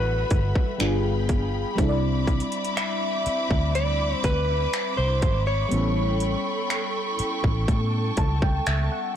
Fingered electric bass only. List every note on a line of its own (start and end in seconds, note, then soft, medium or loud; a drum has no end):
0.00 0.23 A1 medium
0.31 0.52 G1 medium
0.81 1.64 G1 medium
1.79 2.41 C2 loud
3.27 muted fingered electric bass stroke soft
3.51 4.13 D2 medium
4.24 4.66 D2 medium
4.98 5.24 C2 medium
5.23 5.64 G#1 medium
5.72 6.35 A1 loud
7.20 muted fingered electric bass stroke soft
7.44 7.65 A1 medium
7.68 8.10 A2 loud
8.18 8.59 C#2 medium
8.67 8.88 C#2 medium